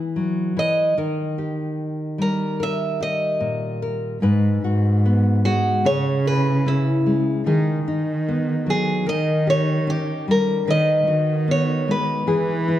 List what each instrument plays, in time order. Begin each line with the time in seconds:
Already playing: nylon-string guitar E3 B3 E4 G#4
0.16 nylon-string guitar F#3
0.57 nylon-string guitar E3, steel-string acoustic guitar D#5
0.97 nylon-string guitar D#3 A#4
1.38 nylon-string guitar G4
2.18 nylon-string guitar G3, steel-string acoustic guitar A#4
2.60 nylon-string guitar A#4, steel-string acoustic guitar E5
3.00 nylon-string guitar G4, steel-string acoustic guitar D#5
3.40 nylon-string guitar A#2
3.82 nylon-string guitar A#4
4.22 nylon-string guitar G#2 B4, cello G#2
4.63 cello G#2, nylon-string guitar F#4
5.06 nylon-string guitar B3
5.45 nylon-string guitar G#3, steel-string acoustic guitar F#4
5.84 cello C#3, nylon-string guitar C#3 G#4, steel-string acoustic guitar C#5
6.26 nylon-string guitar E4, steel-string acoustic guitar B4
6.66 nylon-string guitar C#4, steel-string acoustic guitar E4
7.06 nylon-string guitar G#3
7.45 cello D#3, nylon-string guitar D#3 G#4
7.86 cello D#3, nylon-string guitar D#4
8.28 nylon-string guitar B3
8.66 nylon-string guitar F#3, steel-string acoustic guitar G#4
9.06 cello D#3, nylon-string guitar D#3 A#4, steel-string acoustic guitar D#5
9.47 nylon-string guitar G4, steel-string acoustic guitar C#5
9.87 nylon-string guitar C#4, steel-string acoustic guitar G4
10.28 nylon-string guitar G3, steel-string acoustic guitar A#4
10.66 cello D#3, nylon-string guitar D#3 B4
10.70 steel-string acoustic guitar D#5
11.07 cello D#3, nylon-string guitar F#4
11.48 nylon-string guitar B3, steel-string acoustic guitar C#5
11.88 nylon-string guitar G#3, steel-string acoustic guitar B4
12.26 cello E3, nylon-string guitar E3 G#4
12.68 nylon-string guitar E4